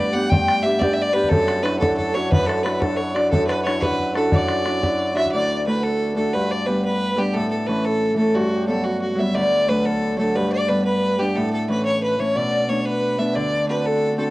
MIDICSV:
0, 0, Header, 1, 5, 480
1, 0, Start_track
1, 0, Key_signature, 2, "major"
1, 0, Tempo, 334262
1, 1893, Time_signature, 12, 3, 24, 8
1, 20538, End_track
2, 0, Start_track
2, 0, Title_t, "Fiddle"
2, 0, Program_c, 0, 110
2, 0, Note_on_c, 0, 74, 90
2, 195, Note_on_c, 0, 78, 97
2, 216, Note_off_c, 0, 74, 0
2, 425, Note_on_c, 0, 79, 102
2, 447, Note_off_c, 0, 78, 0
2, 904, Note_on_c, 0, 76, 92
2, 926, Note_off_c, 0, 79, 0
2, 1139, Note_on_c, 0, 74, 94
2, 1160, Note_off_c, 0, 76, 0
2, 1345, Note_on_c, 0, 76, 86
2, 1366, Note_off_c, 0, 74, 0
2, 1463, Note_on_c, 0, 74, 104
2, 1485, Note_off_c, 0, 76, 0
2, 1625, Note_on_c, 0, 71, 91
2, 1647, Note_off_c, 0, 74, 0
2, 1853, Note_on_c, 0, 69, 109
2, 1874, Note_off_c, 0, 71, 0
2, 2341, Note_on_c, 0, 71, 91
2, 2362, Note_off_c, 0, 69, 0
2, 2566, Note_off_c, 0, 71, 0
2, 2574, Note_on_c, 0, 69, 92
2, 2815, Note_off_c, 0, 69, 0
2, 2828, Note_on_c, 0, 69, 83
2, 3083, Note_on_c, 0, 73, 91
2, 3105, Note_off_c, 0, 69, 0
2, 3328, Note_off_c, 0, 73, 0
2, 3335, Note_on_c, 0, 71, 95
2, 3541, Note_on_c, 0, 69, 92
2, 3563, Note_off_c, 0, 71, 0
2, 3780, Note_on_c, 0, 71, 82
2, 3802, Note_off_c, 0, 69, 0
2, 4029, Note_on_c, 0, 69, 94
2, 4051, Note_off_c, 0, 71, 0
2, 4266, Note_on_c, 0, 73, 90
2, 4288, Note_off_c, 0, 69, 0
2, 4517, Note_on_c, 0, 74, 85
2, 4539, Note_off_c, 0, 73, 0
2, 4741, Note_off_c, 0, 74, 0
2, 4749, Note_on_c, 0, 69, 99
2, 4975, Note_off_c, 0, 69, 0
2, 4984, Note_on_c, 0, 71, 79
2, 5178, Note_off_c, 0, 71, 0
2, 5178, Note_on_c, 0, 71, 66
2, 5214, Note_on_c, 0, 73, 87
2, 5235, Note_off_c, 0, 71, 0
2, 5462, Note_on_c, 0, 71, 94
2, 5484, Note_off_c, 0, 73, 0
2, 5959, Note_off_c, 0, 71, 0
2, 5966, Note_on_c, 0, 69, 79
2, 6216, Note_on_c, 0, 74, 94
2, 6237, Note_off_c, 0, 69, 0
2, 7405, Note_off_c, 0, 74, 0
2, 7413, Note_on_c, 0, 76, 91
2, 7626, Note_off_c, 0, 76, 0
2, 7635, Note_on_c, 0, 74, 103
2, 8092, Note_off_c, 0, 74, 0
2, 8143, Note_on_c, 0, 71, 89
2, 8368, Note_on_c, 0, 69, 96
2, 8390, Note_off_c, 0, 71, 0
2, 8837, Note_off_c, 0, 69, 0
2, 8846, Note_on_c, 0, 69, 85
2, 9092, Note_on_c, 0, 71, 91
2, 9113, Note_off_c, 0, 69, 0
2, 9348, Note_on_c, 0, 74, 92
2, 9369, Note_off_c, 0, 71, 0
2, 9566, Note_on_c, 0, 71, 85
2, 9588, Note_off_c, 0, 74, 0
2, 9813, Note_off_c, 0, 71, 0
2, 9829, Note_on_c, 0, 71, 94
2, 10316, Note_on_c, 0, 67, 85
2, 10337, Note_off_c, 0, 71, 0
2, 10537, Note_on_c, 0, 69, 103
2, 10558, Note_off_c, 0, 67, 0
2, 10771, Note_off_c, 0, 69, 0
2, 10779, Note_on_c, 0, 69, 80
2, 11011, Note_on_c, 0, 71, 88
2, 11033, Note_off_c, 0, 69, 0
2, 11265, Note_on_c, 0, 69, 96
2, 11287, Note_off_c, 0, 71, 0
2, 11732, Note_off_c, 0, 69, 0
2, 11740, Note_on_c, 0, 69, 84
2, 11983, Note_on_c, 0, 66, 90
2, 12005, Note_off_c, 0, 69, 0
2, 12449, Note_off_c, 0, 66, 0
2, 12458, Note_on_c, 0, 69, 83
2, 12691, Note_on_c, 0, 66, 88
2, 12713, Note_off_c, 0, 69, 0
2, 12937, Note_off_c, 0, 66, 0
2, 12944, Note_on_c, 0, 66, 81
2, 13196, Note_on_c, 0, 76, 88
2, 13218, Note_off_c, 0, 66, 0
2, 13418, Note_on_c, 0, 74, 106
2, 13440, Note_off_c, 0, 76, 0
2, 13907, Note_on_c, 0, 71, 92
2, 13929, Note_off_c, 0, 74, 0
2, 14151, Note_on_c, 0, 69, 97
2, 14172, Note_off_c, 0, 71, 0
2, 14610, Note_off_c, 0, 69, 0
2, 14619, Note_on_c, 0, 69, 85
2, 14867, Note_on_c, 0, 71, 91
2, 14889, Note_off_c, 0, 69, 0
2, 15100, Note_off_c, 0, 71, 0
2, 15108, Note_on_c, 0, 74, 94
2, 15345, Note_on_c, 0, 71, 85
2, 15367, Note_off_c, 0, 74, 0
2, 15566, Note_off_c, 0, 71, 0
2, 15575, Note_on_c, 0, 71, 94
2, 16060, Note_on_c, 0, 67, 84
2, 16082, Note_off_c, 0, 71, 0
2, 16302, Note_on_c, 0, 69, 101
2, 16324, Note_off_c, 0, 67, 0
2, 16542, Note_off_c, 0, 69, 0
2, 16551, Note_on_c, 0, 69, 82
2, 16770, Note_off_c, 0, 69, 0
2, 16796, Note_on_c, 0, 71, 86
2, 17013, Note_off_c, 0, 71, 0
2, 17019, Note_on_c, 0, 73, 93
2, 17244, Note_off_c, 0, 73, 0
2, 17279, Note_on_c, 0, 71, 80
2, 17509, Note_on_c, 0, 73, 87
2, 17531, Note_off_c, 0, 71, 0
2, 17758, Note_on_c, 0, 74, 97
2, 17780, Note_off_c, 0, 73, 0
2, 18226, Note_on_c, 0, 73, 82
2, 18248, Note_off_c, 0, 74, 0
2, 18453, Note_on_c, 0, 71, 94
2, 18475, Note_off_c, 0, 73, 0
2, 18933, Note_on_c, 0, 76, 86
2, 18954, Note_off_c, 0, 71, 0
2, 19176, Note_on_c, 0, 74, 102
2, 19198, Note_off_c, 0, 76, 0
2, 19642, Note_off_c, 0, 74, 0
2, 19651, Note_on_c, 0, 71, 81
2, 19902, Note_on_c, 0, 69, 92
2, 19924, Note_off_c, 0, 71, 0
2, 20354, Note_off_c, 0, 69, 0
2, 20362, Note_on_c, 0, 69, 77
2, 20538, Note_off_c, 0, 69, 0
2, 20538, End_track
3, 0, Start_track
3, 0, Title_t, "Flute"
3, 0, Program_c, 1, 73
3, 0, Note_on_c, 1, 71, 74
3, 168, Note_off_c, 1, 71, 0
3, 189, Note_on_c, 1, 78, 77
3, 423, Note_off_c, 1, 78, 0
3, 448, Note_on_c, 1, 79, 98
3, 896, Note_off_c, 1, 79, 0
3, 942, Note_on_c, 1, 76, 78
3, 1180, Note_on_c, 1, 74, 79
3, 1201, Note_off_c, 1, 76, 0
3, 1336, Note_off_c, 1, 74, 0
3, 1490, Note_on_c, 1, 76, 80
3, 1557, Note_on_c, 1, 74, 87
3, 1572, Note_off_c, 1, 76, 0
3, 1885, Note_on_c, 1, 69, 75
3, 1906, Note_off_c, 1, 74, 0
3, 2121, Note_off_c, 1, 69, 0
3, 2130, Note_on_c, 1, 69, 75
3, 2352, Note_on_c, 1, 71, 75
3, 2373, Note_off_c, 1, 69, 0
3, 2581, Note_off_c, 1, 71, 0
3, 2590, Note_on_c, 1, 69, 70
3, 2824, Note_off_c, 1, 69, 0
3, 2836, Note_on_c, 1, 69, 72
3, 3098, Note_on_c, 1, 73, 75
3, 3120, Note_off_c, 1, 69, 0
3, 3328, Note_on_c, 1, 71, 81
3, 3350, Note_off_c, 1, 73, 0
3, 3584, Note_on_c, 1, 69, 76
3, 3606, Note_off_c, 1, 71, 0
3, 3821, Note_on_c, 1, 71, 78
3, 3842, Note_off_c, 1, 69, 0
3, 4059, Note_on_c, 1, 69, 77
3, 4081, Note_off_c, 1, 71, 0
3, 4296, Note_off_c, 1, 69, 0
3, 4532, Note_on_c, 1, 74, 76
3, 4757, Note_on_c, 1, 69, 72
3, 4778, Note_off_c, 1, 74, 0
3, 5005, Note_off_c, 1, 69, 0
3, 5016, Note_on_c, 1, 71, 76
3, 5251, Note_on_c, 1, 73, 73
3, 5272, Note_off_c, 1, 71, 0
3, 5472, Note_off_c, 1, 73, 0
3, 5480, Note_on_c, 1, 71, 70
3, 5980, Note_on_c, 1, 69, 66
3, 6001, Note_off_c, 1, 71, 0
3, 6198, Note_on_c, 1, 74, 76
3, 6219, Note_off_c, 1, 69, 0
3, 6948, Note_off_c, 1, 74, 0
3, 7353, Note_on_c, 1, 74, 62
3, 7424, Note_on_c, 1, 76, 81
3, 7445, Note_off_c, 1, 74, 0
3, 7690, Note_on_c, 1, 74, 78
3, 7711, Note_off_c, 1, 76, 0
3, 8167, Note_on_c, 1, 71, 71
3, 8188, Note_off_c, 1, 74, 0
3, 8385, Note_off_c, 1, 71, 0
3, 8393, Note_on_c, 1, 71, 62
3, 8451, Note_on_c, 1, 69, 67
3, 8465, Note_off_c, 1, 71, 0
3, 8777, Note_off_c, 1, 69, 0
3, 8803, Note_on_c, 1, 71, 56
3, 8858, Note_on_c, 1, 69, 67
3, 8880, Note_off_c, 1, 71, 0
3, 9082, Note_off_c, 1, 69, 0
3, 9091, Note_on_c, 1, 71, 80
3, 9341, Note_on_c, 1, 74, 81
3, 9362, Note_off_c, 1, 71, 0
3, 9567, Note_on_c, 1, 71, 75
3, 9588, Note_off_c, 1, 74, 0
3, 9779, Note_off_c, 1, 71, 0
3, 9788, Note_on_c, 1, 71, 76
3, 10286, Note_on_c, 1, 67, 69
3, 10308, Note_off_c, 1, 71, 0
3, 10545, Note_on_c, 1, 69, 75
3, 10567, Note_off_c, 1, 67, 0
3, 10770, Note_off_c, 1, 69, 0
3, 10778, Note_on_c, 1, 69, 71
3, 11035, Note_on_c, 1, 71, 75
3, 11057, Note_off_c, 1, 69, 0
3, 11271, Note_on_c, 1, 69, 69
3, 11293, Note_off_c, 1, 71, 0
3, 11747, Note_off_c, 1, 69, 0
3, 11766, Note_on_c, 1, 69, 70
3, 11997, Note_on_c, 1, 66, 78
3, 12018, Note_off_c, 1, 69, 0
3, 12223, Note_off_c, 1, 66, 0
3, 12232, Note_on_c, 1, 67, 73
3, 12451, Note_off_c, 1, 67, 0
3, 12476, Note_on_c, 1, 69, 71
3, 12693, Note_off_c, 1, 69, 0
3, 12736, Note_on_c, 1, 66, 69
3, 13207, Note_on_c, 1, 76, 78
3, 13228, Note_off_c, 1, 66, 0
3, 13456, Note_off_c, 1, 76, 0
3, 13456, Note_on_c, 1, 76, 75
3, 13525, Note_on_c, 1, 74, 81
3, 13539, Note_off_c, 1, 76, 0
3, 13884, Note_on_c, 1, 73, 58
3, 13905, Note_off_c, 1, 74, 0
3, 13922, Note_on_c, 1, 71, 78
3, 13944, Note_off_c, 1, 73, 0
3, 14153, Note_off_c, 1, 71, 0
3, 14165, Note_on_c, 1, 69, 74
3, 14546, Note_off_c, 1, 69, 0
3, 14858, Note_on_c, 1, 71, 83
3, 15113, Note_on_c, 1, 74, 85
3, 15135, Note_off_c, 1, 71, 0
3, 15563, Note_off_c, 1, 74, 0
3, 15572, Note_on_c, 1, 71, 78
3, 15726, Note_off_c, 1, 71, 0
3, 15756, Note_on_c, 1, 71, 63
3, 15900, Note_off_c, 1, 71, 0
3, 15908, Note_on_c, 1, 71, 80
3, 16055, Note_off_c, 1, 71, 0
3, 16065, Note_on_c, 1, 67, 67
3, 16287, Note_off_c, 1, 67, 0
3, 16298, Note_on_c, 1, 69, 72
3, 16516, Note_off_c, 1, 69, 0
3, 16525, Note_on_c, 1, 69, 74
3, 16756, Note_off_c, 1, 69, 0
3, 17031, Note_on_c, 1, 73, 69
3, 17235, Note_off_c, 1, 73, 0
3, 17243, Note_on_c, 1, 71, 76
3, 17475, Note_off_c, 1, 71, 0
3, 17487, Note_on_c, 1, 73, 72
3, 17727, Note_on_c, 1, 74, 81
3, 17748, Note_off_c, 1, 73, 0
3, 18188, Note_off_c, 1, 74, 0
3, 18197, Note_on_c, 1, 73, 70
3, 18431, Note_off_c, 1, 73, 0
3, 18440, Note_on_c, 1, 71, 70
3, 19158, Note_on_c, 1, 74, 76
3, 19180, Note_off_c, 1, 71, 0
3, 19638, Note_off_c, 1, 74, 0
3, 19647, Note_on_c, 1, 71, 73
3, 19876, Note_off_c, 1, 71, 0
3, 19891, Note_on_c, 1, 69, 67
3, 20341, Note_off_c, 1, 69, 0
3, 20366, Note_on_c, 1, 69, 66
3, 20538, Note_off_c, 1, 69, 0
3, 20538, End_track
4, 0, Start_track
4, 0, Title_t, "Harp"
4, 0, Program_c, 2, 46
4, 0, Note_on_c, 2, 43, 67
4, 0, Note_on_c, 2, 57, 46
4, 0, Note_on_c, 2, 59, 50
4, 0, Note_on_c, 2, 62, 45
4, 0, Note_on_c, 2, 64, 55
4, 0, Note_on_c, 2, 67, 54
4, 206, Note_off_c, 2, 59, 0
4, 212, Note_on_c, 2, 59, 49
4, 214, Note_off_c, 2, 62, 0
4, 219, Note_on_c, 2, 62, 46
4, 221, Note_off_c, 2, 67, 0
4, 227, Note_on_c, 2, 67, 54
4, 443, Note_off_c, 2, 43, 0
4, 460, Note_on_c, 2, 43, 62
4, 922, Note_off_c, 2, 59, 0
4, 928, Note_on_c, 2, 59, 50
4, 932, Note_off_c, 2, 62, 0
4, 937, Note_off_c, 2, 67, 0
4, 938, Note_on_c, 2, 62, 47
4, 943, Note_on_c, 2, 67, 52
4, 1160, Note_off_c, 2, 59, 0
4, 1166, Note_on_c, 2, 59, 52
4, 1169, Note_off_c, 2, 62, 0
4, 1175, Note_on_c, 2, 62, 46
4, 1181, Note_off_c, 2, 67, 0
4, 1186, Note_on_c, 2, 67, 58
4, 1638, Note_off_c, 2, 59, 0
4, 1641, Note_off_c, 2, 62, 0
4, 1644, Note_on_c, 2, 59, 50
4, 1646, Note_on_c, 2, 62, 45
4, 1652, Note_off_c, 2, 67, 0
4, 1658, Note_on_c, 2, 67, 54
4, 1895, Note_on_c, 2, 42, 70
4, 1964, Note_off_c, 2, 43, 0
4, 1981, Note_off_c, 2, 67, 0
4, 2322, Note_off_c, 2, 62, 0
4, 2328, Note_on_c, 2, 62, 48
4, 2362, Note_off_c, 2, 64, 0
4, 2368, Note_on_c, 2, 64, 44
4, 2407, Note_on_c, 2, 66, 51
4, 2588, Note_off_c, 2, 62, 0
4, 2594, Note_on_c, 2, 62, 49
4, 2599, Note_off_c, 2, 64, 0
4, 2604, Note_off_c, 2, 66, 0
4, 2604, Note_on_c, 2, 64, 45
4, 2609, Note_on_c, 2, 66, 54
4, 3086, Note_off_c, 2, 62, 0
4, 3091, Note_on_c, 2, 62, 46
4, 3098, Note_off_c, 2, 64, 0
4, 3102, Note_off_c, 2, 66, 0
4, 3103, Note_on_c, 2, 64, 44
4, 3108, Note_on_c, 2, 66, 53
4, 3324, Note_off_c, 2, 42, 0
4, 3341, Note_on_c, 2, 42, 67
4, 3564, Note_off_c, 2, 57, 0
4, 3804, Note_off_c, 2, 62, 0
4, 3810, Note_on_c, 2, 62, 49
4, 3817, Note_off_c, 2, 64, 0
4, 3818, Note_off_c, 2, 66, 0
4, 3822, Note_on_c, 2, 64, 45
4, 3824, Note_on_c, 2, 66, 55
4, 4051, Note_off_c, 2, 62, 0
4, 4057, Note_on_c, 2, 62, 50
4, 4066, Note_off_c, 2, 66, 0
4, 4067, Note_off_c, 2, 64, 0
4, 4071, Note_on_c, 2, 66, 55
4, 4072, Note_on_c, 2, 64, 48
4, 4531, Note_off_c, 2, 62, 0
4, 4537, Note_on_c, 2, 62, 47
4, 4541, Note_off_c, 2, 64, 0
4, 4546, Note_off_c, 2, 66, 0
4, 4547, Note_on_c, 2, 64, 47
4, 4551, Note_on_c, 2, 66, 54
4, 4769, Note_off_c, 2, 42, 0
4, 4786, Note_on_c, 2, 42, 67
4, 5249, Note_off_c, 2, 62, 0
4, 5255, Note_on_c, 2, 62, 47
4, 5257, Note_off_c, 2, 64, 0
4, 5263, Note_on_c, 2, 64, 44
4, 5265, Note_off_c, 2, 66, 0
4, 5271, Note_on_c, 2, 66, 48
4, 5496, Note_off_c, 2, 62, 0
4, 5501, Note_on_c, 2, 62, 46
4, 5506, Note_off_c, 2, 64, 0
4, 5510, Note_off_c, 2, 66, 0
4, 5512, Note_on_c, 2, 64, 43
4, 5516, Note_on_c, 2, 66, 53
4, 5954, Note_off_c, 2, 62, 0
4, 5960, Note_on_c, 2, 62, 49
4, 5969, Note_off_c, 2, 64, 0
4, 5972, Note_off_c, 2, 66, 0
4, 5974, Note_on_c, 2, 64, 44
4, 5978, Note_on_c, 2, 66, 53
4, 6103, Note_off_c, 2, 59, 0
4, 6196, Note_off_c, 2, 42, 0
4, 6214, Note_on_c, 2, 42, 66
4, 6681, Note_off_c, 2, 62, 0
4, 6686, Note_on_c, 2, 62, 48
4, 6688, Note_off_c, 2, 64, 0
4, 6694, Note_on_c, 2, 64, 43
4, 6695, Note_off_c, 2, 66, 0
4, 6700, Note_on_c, 2, 66, 52
4, 6918, Note_off_c, 2, 62, 0
4, 6924, Note_on_c, 2, 62, 49
4, 6931, Note_off_c, 2, 64, 0
4, 6934, Note_off_c, 2, 66, 0
4, 6936, Note_on_c, 2, 64, 45
4, 6940, Note_on_c, 2, 66, 53
4, 7363, Note_off_c, 2, 62, 0
4, 7369, Note_on_c, 2, 62, 49
4, 7401, Note_off_c, 2, 64, 0
4, 7407, Note_on_c, 2, 64, 43
4, 7441, Note_off_c, 2, 66, 0
4, 7447, Note_on_c, 2, 66, 53
4, 7662, Note_on_c, 2, 38, 63
4, 7729, Note_off_c, 2, 42, 0
4, 8137, Note_on_c, 2, 57, 44
4, 8141, Note_off_c, 2, 62, 0
4, 8146, Note_on_c, 2, 62, 40
4, 8150, Note_off_c, 2, 66, 0
4, 8156, Note_on_c, 2, 66, 47
4, 8848, Note_off_c, 2, 57, 0
4, 8853, Note_on_c, 2, 57, 44
4, 8854, Note_off_c, 2, 62, 0
4, 8859, Note_on_c, 2, 62, 40
4, 8861, Note_off_c, 2, 66, 0
4, 8867, Note_on_c, 2, 66, 47
4, 9104, Note_on_c, 2, 43, 57
4, 9171, Note_off_c, 2, 38, 0
4, 9190, Note_off_c, 2, 66, 0
4, 9583, Note_on_c, 2, 55, 47
4, 9591, Note_off_c, 2, 62, 0
4, 9591, Note_on_c, 2, 59, 42
4, 9596, Note_on_c, 2, 62, 50
4, 10278, Note_off_c, 2, 55, 0
4, 10296, Note_on_c, 2, 55, 46
4, 10300, Note_off_c, 2, 59, 0
4, 10305, Note_on_c, 2, 59, 43
4, 10308, Note_off_c, 2, 62, 0
4, 10314, Note_on_c, 2, 62, 48
4, 10554, Note_on_c, 2, 45, 66
4, 10613, Note_off_c, 2, 43, 0
4, 10613, Note_off_c, 2, 55, 0
4, 11027, Note_on_c, 2, 52, 48
4, 11030, Note_off_c, 2, 57, 0
4, 11036, Note_on_c, 2, 57, 41
4, 11037, Note_on_c, 2, 61, 51
4, 11123, Note_off_c, 2, 62, 0
4, 11158, Note_off_c, 2, 64, 0
4, 11688, Note_off_c, 2, 52, 0
4, 11693, Note_on_c, 2, 52, 46
4, 11732, Note_off_c, 2, 57, 0
4, 11737, Note_on_c, 2, 57, 39
4, 11771, Note_off_c, 2, 61, 0
4, 11777, Note_on_c, 2, 61, 50
4, 11980, Note_on_c, 2, 43, 63
4, 12054, Note_off_c, 2, 45, 0
4, 12054, Note_off_c, 2, 52, 0
4, 12455, Note_on_c, 2, 54, 47
4, 12461, Note_on_c, 2, 55, 44
4, 12465, Note_off_c, 2, 59, 0
4, 12470, Note_on_c, 2, 59, 51
4, 13133, Note_off_c, 2, 54, 0
4, 13139, Note_on_c, 2, 54, 47
4, 13158, Note_off_c, 2, 55, 0
4, 13175, Note_on_c, 2, 55, 42
4, 13210, Note_off_c, 2, 59, 0
4, 13216, Note_on_c, 2, 59, 55
4, 13418, Note_on_c, 2, 38, 66
4, 13495, Note_off_c, 2, 43, 0
4, 13495, Note_off_c, 2, 54, 0
4, 13495, Note_off_c, 2, 55, 0
4, 13504, Note_off_c, 2, 61, 0
4, 13898, Note_on_c, 2, 54, 46
4, 13904, Note_off_c, 2, 57, 0
4, 13910, Note_on_c, 2, 57, 42
4, 13915, Note_on_c, 2, 62, 53
4, 14594, Note_off_c, 2, 54, 0
4, 14600, Note_on_c, 2, 54, 49
4, 14626, Note_off_c, 2, 57, 0
4, 14632, Note_on_c, 2, 57, 44
4, 14664, Note_off_c, 2, 62, 0
4, 14669, Note_on_c, 2, 62, 50
4, 14863, Note_on_c, 2, 43, 64
4, 14935, Note_off_c, 2, 38, 0
4, 14936, Note_off_c, 2, 54, 0
4, 15348, Note_on_c, 2, 55, 47
4, 15354, Note_off_c, 2, 59, 0
4, 15355, Note_off_c, 2, 62, 0
4, 15360, Note_on_c, 2, 59, 43
4, 15361, Note_on_c, 2, 62, 52
4, 16054, Note_off_c, 2, 55, 0
4, 16070, Note_off_c, 2, 59, 0
4, 16072, Note_on_c, 2, 55, 46
4, 16076, Note_on_c, 2, 59, 44
4, 16081, Note_off_c, 2, 62, 0
4, 16087, Note_on_c, 2, 62, 51
4, 16324, Note_on_c, 2, 45, 64
4, 16375, Note_off_c, 2, 43, 0
4, 16375, Note_off_c, 2, 55, 0
4, 16780, Note_on_c, 2, 52, 46
4, 16784, Note_off_c, 2, 57, 0
4, 16789, Note_on_c, 2, 57, 42
4, 16797, Note_on_c, 2, 61, 52
4, 16883, Note_off_c, 2, 62, 0
4, 17489, Note_off_c, 2, 52, 0
4, 17506, Note_on_c, 2, 52, 43
4, 17509, Note_off_c, 2, 57, 0
4, 17515, Note_on_c, 2, 57, 41
4, 17521, Note_off_c, 2, 61, 0
4, 17527, Note_on_c, 2, 61, 50
4, 17739, Note_on_c, 2, 47, 61
4, 17814, Note_off_c, 2, 45, 0
4, 17814, Note_off_c, 2, 52, 0
4, 18217, Note_off_c, 2, 57, 0
4, 18219, Note_off_c, 2, 59, 0
4, 18223, Note_on_c, 2, 57, 48
4, 18225, Note_on_c, 2, 59, 44
4, 18235, Note_on_c, 2, 62, 52
4, 18321, Note_off_c, 2, 61, 0
4, 18933, Note_off_c, 2, 57, 0
4, 18938, Note_on_c, 2, 57, 45
4, 18939, Note_off_c, 2, 59, 0
4, 18945, Note_on_c, 2, 59, 40
4, 18949, Note_off_c, 2, 62, 0
4, 18955, Note_on_c, 2, 62, 51
4, 19185, Note_on_c, 2, 50, 68
4, 19252, Note_off_c, 2, 47, 0
4, 19654, Note_on_c, 2, 60, 43
4, 19655, Note_off_c, 2, 62, 0
4, 19660, Note_on_c, 2, 62, 41
4, 19667, Note_on_c, 2, 66, 47
4, 19740, Note_off_c, 2, 59, 0
4, 20353, Note_off_c, 2, 60, 0
4, 20358, Note_on_c, 2, 60, 46
4, 20364, Note_off_c, 2, 62, 0
4, 20366, Note_off_c, 2, 66, 0
4, 20370, Note_on_c, 2, 62, 42
4, 20371, Note_on_c, 2, 66, 50
4, 20538, Note_off_c, 2, 50, 0
4, 20538, Note_off_c, 2, 57, 0
4, 20538, Note_off_c, 2, 60, 0
4, 20538, Note_off_c, 2, 62, 0
4, 20538, Note_off_c, 2, 66, 0
4, 20538, End_track
5, 0, Start_track
5, 0, Title_t, "Bodhran"
5, 455, Note_on_c, 9, 64, 84
5, 599, Note_off_c, 9, 64, 0
5, 695, Note_on_c, 9, 64, 63
5, 839, Note_off_c, 9, 64, 0
5, 1170, Note_on_c, 9, 64, 85
5, 1314, Note_off_c, 9, 64, 0
5, 1778, Note_on_c, 9, 64, 27
5, 1887, Note_off_c, 9, 64, 0
5, 1887, Note_on_c, 9, 64, 76
5, 2031, Note_off_c, 9, 64, 0
5, 2128, Note_on_c, 9, 64, 64
5, 2271, Note_off_c, 9, 64, 0
5, 2378, Note_on_c, 9, 64, 63
5, 2521, Note_off_c, 9, 64, 0
5, 2619, Note_on_c, 9, 64, 82
5, 2736, Note_off_c, 9, 64, 0
5, 2736, Note_on_c, 9, 64, 25
5, 2853, Note_off_c, 9, 64, 0
5, 2853, Note_on_c, 9, 64, 26
5, 2996, Note_off_c, 9, 64, 0
5, 3334, Note_on_c, 9, 64, 88
5, 3477, Note_off_c, 9, 64, 0
5, 3581, Note_on_c, 9, 64, 61
5, 3724, Note_off_c, 9, 64, 0
5, 3817, Note_on_c, 9, 64, 61
5, 3961, Note_off_c, 9, 64, 0
5, 4045, Note_on_c, 9, 64, 79
5, 4189, Note_off_c, 9, 64, 0
5, 4538, Note_on_c, 9, 64, 65
5, 4682, Note_off_c, 9, 64, 0
5, 4775, Note_on_c, 9, 64, 78
5, 4919, Note_off_c, 9, 64, 0
5, 5017, Note_on_c, 9, 64, 61
5, 5160, Note_off_c, 9, 64, 0
5, 5267, Note_on_c, 9, 64, 63
5, 5410, Note_off_c, 9, 64, 0
5, 5488, Note_on_c, 9, 64, 80
5, 5605, Note_off_c, 9, 64, 0
5, 5605, Note_on_c, 9, 64, 22
5, 5723, Note_off_c, 9, 64, 0
5, 5723, Note_on_c, 9, 64, 24
5, 5866, Note_off_c, 9, 64, 0
5, 5966, Note_on_c, 9, 64, 55
5, 6109, Note_off_c, 9, 64, 0
5, 6205, Note_on_c, 9, 64, 78
5, 6348, Note_off_c, 9, 64, 0
5, 6440, Note_on_c, 9, 64, 61
5, 6583, Note_off_c, 9, 64, 0
5, 6686, Note_on_c, 9, 64, 57
5, 6830, Note_off_c, 9, 64, 0
5, 6937, Note_on_c, 9, 64, 74
5, 7081, Note_off_c, 9, 64, 0
5, 7423, Note_on_c, 9, 64, 56
5, 7549, Note_off_c, 9, 64, 0
5, 7549, Note_on_c, 9, 64, 23
5, 7693, Note_off_c, 9, 64, 0
5, 20538, End_track
0, 0, End_of_file